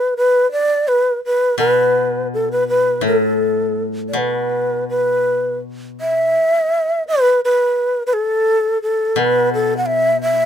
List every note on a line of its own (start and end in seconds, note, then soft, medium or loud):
0.00 0.15 B4 medium
0.17 0.50 B4 medium
0.52 0.89 D5 medium
0.88 1.23 B4 medium
1.25 1.57 B4 medium
1.58 3.03 B2 soft
1.58 2.28 B4 medium
2.34 2.49 A4 medium
2.52 2.67 B4 medium
2.68 3.01 B4 medium
3.01 4.13 A2 soft
3.06 3.83 A4 medium
4.09 4.19 D5 soft
4.13 6.34 B2 soft
4.18 4.88 B4 medium
4.89 5.58 B4 medium
6.01 7.04 E5 medium
7.08 7.40 B4 medium
7.45 8.03 B4 medium
8.07 8.15 B4 medium
8.13 8.82 A4 medium
8.82 9.21 A4 medium
9.16 10.46 B2 soft
9.16 9.53 B4 medium
9.54 9.77 A4 medium
9.77 9.88 F#5 medium
9.86 10.21 E5 medium
10.22 10.46 E5 medium